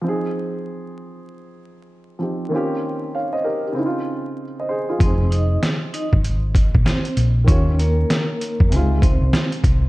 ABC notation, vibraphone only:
X:1
M:4/4
L:1/16
Q:"Swing 16ths" 1/4=97
K:Fm
V:1 name="Vibraphone"
z16 | z16 | [Cc]2 [Ee]2 z2 [Ee] z4 z [Cc]2 z2 | [Dd]2 [B,B]6 [A,A]2 [Cc]3 z3 |]